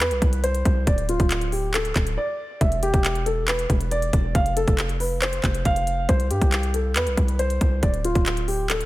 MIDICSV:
0, 0, Header, 1, 4, 480
1, 0, Start_track
1, 0, Tempo, 434783
1, 962, Time_signature, 4, 2, 24, 8
1, 9776, End_track
2, 0, Start_track
2, 0, Title_t, "Grand piano"
2, 0, Program_c, 0, 0
2, 3, Note_on_c, 0, 71, 90
2, 453, Note_off_c, 0, 71, 0
2, 482, Note_on_c, 0, 72, 92
2, 933, Note_off_c, 0, 72, 0
2, 962, Note_on_c, 0, 74, 89
2, 1146, Note_off_c, 0, 74, 0
2, 1204, Note_on_c, 0, 65, 82
2, 1654, Note_off_c, 0, 65, 0
2, 1682, Note_on_c, 0, 67, 64
2, 1866, Note_off_c, 0, 67, 0
2, 1923, Note_on_c, 0, 69, 80
2, 2373, Note_off_c, 0, 69, 0
2, 2401, Note_on_c, 0, 74, 93
2, 2853, Note_off_c, 0, 74, 0
2, 2882, Note_on_c, 0, 76, 81
2, 3066, Note_off_c, 0, 76, 0
2, 3121, Note_on_c, 0, 67, 87
2, 3573, Note_off_c, 0, 67, 0
2, 3601, Note_on_c, 0, 69, 79
2, 3786, Note_off_c, 0, 69, 0
2, 3841, Note_on_c, 0, 71, 86
2, 4292, Note_off_c, 0, 71, 0
2, 4322, Note_on_c, 0, 74, 97
2, 4773, Note_off_c, 0, 74, 0
2, 4803, Note_on_c, 0, 77, 92
2, 4987, Note_off_c, 0, 77, 0
2, 5042, Note_on_c, 0, 69, 88
2, 5493, Note_off_c, 0, 69, 0
2, 5522, Note_on_c, 0, 71, 75
2, 5706, Note_off_c, 0, 71, 0
2, 5763, Note_on_c, 0, 72, 85
2, 6214, Note_off_c, 0, 72, 0
2, 6244, Note_on_c, 0, 77, 97
2, 6694, Note_off_c, 0, 77, 0
2, 6722, Note_on_c, 0, 72, 90
2, 6906, Note_off_c, 0, 72, 0
2, 6963, Note_on_c, 0, 67, 80
2, 7414, Note_off_c, 0, 67, 0
2, 7443, Note_on_c, 0, 69, 69
2, 7627, Note_off_c, 0, 69, 0
2, 7683, Note_on_c, 0, 71, 90
2, 8133, Note_off_c, 0, 71, 0
2, 8161, Note_on_c, 0, 72, 90
2, 8612, Note_off_c, 0, 72, 0
2, 8641, Note_on_c, 0, 74, 87
2, 8826, Note_off_c, 0, 74, 0
2, 8883, Note_on_c, 0, 65, 85
2, 9333, Note_off_c, 0, 65, 0
2, 9360, Note_on_c, 0, 67, 64
2, 9545, Note_off_c, 0, 67, 0
2, 9602, Note_on_c, 0, 69, 78
2, 9776, Note_off_c, 0, 69, 0
2, 9776, End_track
3, 0, Start_track
3, 0, Title_t, "808-style bass"
3, 0, Program_c, 1, 38
3, 1, Note_on_c, 1, 40, 98
3, 121, Note_on_c, 1, 36, 103
3, 138, Note_off_c, 1, 40, 0
3, 235, Note_off_c, 1, 36, 0
3, 241, Note_on_c, 1, 36, 106
3, 702, Note_off_c, 1, 36, 0
3, 722, Note_on_c, 1, 36, 108
3, 952, Note_off_c, 1, 36, 0
3, 961, Note_on_c, 1, 26, 111
3, 1307, Note_off_c, 1, 26, 0
3, 1322, Note_on_c, 1, 26, 104
3, 2128, Note_off_c, 1, 26, 0
3, 2161, Note_on_c, 1, 26, 109
3, 2401, Note_off_c, 1, 26, 0
3, 2882, Note_on_c, 1, 28, 110
3, 3227, Note_off_c, 1, 28, 0
3, 3242, Note_on_c, 1, 28, 107
3, 4048, Note_off_c, 1, 28, 0
3, 4081, Note_on_c, 1, 28, 110
3, 4542, Note_off_c, 1, 28, 0
3, 4562, Note_on_c, 1, 28, 107
3, 4792, Note_off_c, 1, 28, 0
3, 4802, Note_on_c, 1, 29, 114
3, 5147, Note_off_c, 1, 29, 0
3, 5162, Note_on_c, 1, 29, 103
3, 5968, Note_off_c, 1, 29, 0
3, 6001, Note_on_c, 1, 29, 108
3, 6232, Note_off_c, 1, 29, 0
3, 6242, Note_on_c, 1, 29, 108
3, 6702, Note_off_c, 1, 29, 0
3, 6721, Note_on_c, 1, 36, 107
3, 6961, Note_on_c, 1, 43, 102
3, 6977, Note_off_c, 1, 36, 0
3, 7075, Note_off_c, 1, 43, 0
3, 7082, Note_on_c, 1, 36, 109
3, 7681, Note_on_c, 1, 40, 98
3, 7698, Note_off_c, 1, 36, 0
3, 7801, Note_on_c, 1, 36, 102
3, 7818, Note_off_c, 1, 40, 0
3, 7915, Note_off_c, 1, 36, 0
3, 7920, Note_on_c, 1, 36, 110
3, 8382, Note_off_c, 1, 36, 0
3, 8402, Note_on_c, 1, 36, 112
3, 8632, Note_off_c, 1, 36, 0
3, 8642, Note_on_c, 1, 26, 112
3, 8987, Note_off_c, 1, 26, 0
3, 9002, Note_on_c, 1, 26, 101
3, 9776, Note_off_c, 1, 26, 0
3, 9776, End_track
4, 0, Start_track
4, 0, Title_t, "Drums"
4, 2, Note_on_c, 9, 39, 120
4, 2, Note_on_c, 9, 42, 83
4, 112, Note_off_c, 9, 39, 0
4, 113, Note_off_c, 9, 42, 0
4, 122, Note_on_c, 9, 42, 61
4, 232, Note_off_c, 9, 42, 0
4, 241, Note_on_c, 9, 36, 90
4, 242, Note_on_c, 9, 42, 72
4, 351, Note_off_c, 9, 36, 0
4, 353, Note_off_c, 9, 42, 0
4, 362, Note_on_c, 9, 42, 59
4, 472, Note_off_c, 9, 42, 0
4, 482, Note_on_c, 9, 42, 91
4, 593, Note_off_c, 9, 42, 0
4, 602, Note_on_c, 9, 42, 60
4, 713, Note_off_c, 9, 42, 0
4, 722, Note_on_c, 9, 36, 100
4, 722, Note_on_c, 9, 42, 74
4, 833, Note_off_c, 9, 36, 0
4, 833, Note_off_c, 9, 42, 0
4, 962, Note_on_c, 9, 36, 116
4, 962, Note_on_c, 9, 42, 91
4, 1072, Note_off_c, 9, 36, 0
4, 1072, Note_off_c, 9, 42, 0
4, 1081, Note_on_c, 9, 42, 56
4, 1192, Note_off_c, 9, 42, 0
4, 1201, Note_on_c, 9, 42, 100
4, 1312, Note_off_c, 9, 42, 0
4, 1322, Note_on_c, 9, 36, 96
4, 1322, Note_on_c, 9, 42, 63
4, 1432, Note_off_c, 9, 36, 0
4, 1432, Note_off_c, 9, 42, 0
4, 1442, Note_on_c, 9, 39, 99
4, 1442, Note_on_c, 9, 42, 83
4, 1552, Note_off_c, 9, 39, 0
4, 1552, Note_off_c, 9, 42, 0
4, 1562, Note_on_c, 9, 42, 51
4, 1672, Note_off_c, 9, 42, 0
4, 1682, Note_on_c, 9, 46, 85
4, 1792, Note_off_c, 9, 46, 0
4, 1921, Note_on_c, 9, 39, 125
4, 1922, Note_on_c, 9, 42, 84
4, 2031, Note_off_c, 9, 39, 0
4, 2032, Note_off_c, 9, 42, 0
4, 2042, Note_on_c, 9, 42, 58
4, 2152, Note_off_c, 9, 42, 0
4, 2160, Note_on_c, 9, 39, 89
4, 2161, Note_on_c, 9, 36, 90
4, 2161, Note_on_c, 9, 42, 74
4, 2271, Note_off_c, 9, 36, 0
4, 2271, Note_off_c, 9, 39, 0
4, 2272, Note_off_c, 9, 42, 0
4, 2281, Note_on_c, 9, 42, 58
4, 2392, Note_off_c, 9, 42, 0
4, 2881, Note_on_c, 9, 36, 113
4, 2882, Note_on_c, 9, 42, 92
4, 2992, Note_off_c, 9, 36, 0
4, 2992, Note_off_c, 9, 42, 0
4, 3002, Note_on_c, 9, 42, 56
4, 3112, Note_off_c, 9, 42, 0
4, 3121, Note_on_c, 9, 42, 98
4, 3232, Note_off_c, 9, 42, 0
4, 3242, Note_on_c, 9, 36, 97
4, 3242, Note_on_c, 9, 42, 64
4, 3352, Note_off_c, 9, 36, 0
4, 3352, Note_off_c, 9, 42, 0
4, 3362, Note_on_c, 9, 39, 100
4, 3362, Note_on_c, 9, 42, 78
4, 3472, Note_off_c, 9, 39, 0
4, 3472, Note_off_c, 9, 42, 0
4, 3482, Note_on_c, 9, 42, 49
4, 3593, Note_off_c, 9, 42, 0
4, 3602, Note_on_c, 9, 42, 82
4, 3713, Note_off_c, 9, 42, 0
4, 3841, Note_on_c, 9, 39, 119
4, 3842, Note_on_c, 9, 42, 81
4, 3952, Note_off_c, 9, 39, 0
4, 3952, Note_off_c, 9, 42, 0
4, 3962, Note_on_c, 9, 42, 62
4, 4073, Note_off_c, 9, 42, 0
4, 4081, Note_on_c, 9, 36, 87
4, 4082, Note_on_c, 9, 42, 71
4, 4191, Note_off_c, 9, 36, 0
4, 4193, Note_off_c, 9, 42, 0
4, 4202, Note_on_c, 9, 42, 60
4, 4312, Note_off_c, 9, 42, 0
4, 4322, Note_on_c, 9, 42, 89
4, 4432, Note_off_c, 9, 42, 0
4, 4442, Note_on_c, 9, 42, 60
4, 4552, Note_off_c, 9, 42, 0
4, 4562, Note_on_c, 9, 36, 100
4, 4562, Note_on_c, 9, 42, 76
4, 4672, Note_off_c, 9, 36, 0
4, 4672, Note_off_c, 9, 42, 0
4, 4802, Note_on_c, 9, 36, 115
4, 4802, Note_on_c, 9, 42, 90
4, 4912, Note_off_c, 9, 36, 0
4, 4913, Note_off_c, 9, 42, 0
4, 4922, Note_on_c, 9, 42, 56
4, 5033, Note_off_c, 9, 42, 0
4, 5042, Note_on_c, 9, 42, 101
4, 5152, Note_off_c, 9, 42, 0
4, 5162, Note_on_c, 9, 36, 95
4, 5162, Note_on_c, 9, 42, 62
4, 5272, Note_off_c, 9, 36, 0
4, 5272, Note_off_c, 9, 42, 0
4, 5282, Note_on_c, 9, 39, 103
4, 5282, Note_on_c, 9, 42, 81
4, 5393, Note_off_c, 9, 39, 0
4, 5393, Note_off_c, 9, 42, 0
4, 5403, Note_on_c, 9, 42, 50
4, 5513, Note_off_c, 9, 42, 0
4, 5522, Note_on_c, 9, 46, 87
4, 5633, Note_off_c, 9, 46, 0
4, 5762, Note_on_c, 9, 39, 120
4, 5762, Note_on_c, 9, 42, 85
4, 5872, Note_off_c, 9, 39, 0
4, 5872, Note_off_c, 9, 42, 0
4, 5882, Note_on_c, 9, 42, 60
4, 5992, Note_off_c, 9, 42, 0
4, 6001, Note_on_c, 9, 36, 88
4, 6001, Note_on_c, 9, 39, 91
4, 6002, Note_on_c, 9, 42, 72
4, 6111, Note_off_c, 9, 36, 0
4, 6112, Note_off_c, 9, 39, 0
4, 6113, Note_off_c, 9, 42, 0
4, 6122, Note_on_c, 9, 42, 59
4, 6232, Note_off_c, 9, 42, 0
4, 6242, Note_on_c, 9, 36, 96
4, 6242, Note_on_c, 9, 42, 91
4, 6352, Note_off_c, 9, 36, 0
4, 6352, Note_off_c, 9, 42, 0
4, 6362, Note_on_c, 9, 42, 59
4, 6472, Note_off_c, 9, 42, 0
4, 6482, Note_on_c, 9, 42, 77
4, 6592, Note_off_c, 9, 42, 0
4, 6721, Note_on_c, 9, 36, 116
4, 6722, Note_on_c, 9, 42, 88
4, 6832, Note_off_c, 9, 36, 0
4, 6832, Note_off_c, 9, 42, 0
4, 6842, Note_on_c, 9, 42, 56
4, 6952, Note_off_c, 9, 42, 0
4, 6962, Note_on_c, 9, 42, 101
4, 7073, Note_off_c, 9, 42, 0
4, 7082, Note_on_c, 9, 36, 92
4, 7082, Note_on_c, 9, 42, 64
4, 7192, Note_off_c, 9, 36, 0
4, 7193, Note_off_c, 9, 42, 0
4, 7202, Note_on_c, 9, 39, 104
4, 7202, Note_on_c, 9, 42, 78
4, 7313, Note_off_c, 9, 39, 0
4, 7313, Note_off_c, 9, 42, 0
4, 7323, Note_on_c, 9, 42, 50
4, 7433, Note_off_c, 9, 42, 0
4, 7442, Note_on_c, 9, 42, 86
4, 7552, Note_off_c, 9, 42, 0
4, 7681, Note_on_c, 9, 39, 124
4, 7681, Note_on_c, 9, 42, 82
4, 7791, Note_off_c, 9, 39, 0
4, 7792, Note_off_c, 9, 42, 0
4, 7802, Note_on_c, 9, 42, 61
4, 7912, Note_off_c, 9, 42, 0
4, 7921, Note_on_c, 9, 36, 90
4, 7921, Note_on_c, 9, 42, 71
4, 8031, Note_off_c, 9, 36, 0
4, 8031, Note_off_c, 9, 42, 0
4, 8042, Note_on_c, 9, 42, 59
4, 8152, Note_off_c, 9, 42, 0
4, 8161, Note_on_c, 9, 42, 91
4, 8272, Note_off_c, 9, 42, 0
4, 8282, Note_on_c, 9, 42, 60
4, 8392, Note_off_c, 9, 42, 0
4, 8402, Note_on_c, 9, 36, 102
4, 8402, Note_on_c, 9, 42, 73
4, 8512, Note_off_c, 9, 36, 0
4, 8512, Note_off_c, 9, 42, 0
4, 8642, Note_on_c, 9, 36, 118
4, 8642, Note_on_c, 9, 42, 92
4, 8752, Note_off_c, 9, 36, 0
4, 8752, Note_off_c, 9, 42, 0
4, 8762, Note_on_c, 9, 42, 56
4, 8873, Note_off_c, 9, 42, 0
4, 8882, Note_on_c, 9, 42, 102
4, 8993, Note_off_c, 9, 42, 0
4, 9002, Note_on_c, 9, 36, 97
4, 9002, Note_on_c, 9, 42, 61
4, 9112, Note_off_c, 9, 36, 0
4, 9113, Note_off_c, 9, 42, 0
4, 9122, Note_on_c, 9, 39, 102
4, 9122, Note_on_c, 9, 42, 77
4, 9232, Note_off_c, 9, 39, 0
4, 9232, Note_off_c, 9, 42, 0
4, 9242, Note_on_c, 9, 42, 51
4, 9352, Note_off_c, 9, 42, 0
4, 9362, Note_on_c, 9, 46, 86
4, 9473, Note_off_c, 9, 46, 0
4, 9601, Note_on_c, 9, 39, 121
4, 9602, Note_on_c, 9, 42, 85
4, 9712, Note_off_c, 9, 39, 0
4, 9712, Note_off_c, 9, 42, 0
4, 9722, Note_on_c, 9, 42, 60
4, 9776, Note_off_c, 9, 42, 0
4, 9776, End_track
0, 0, End_of_file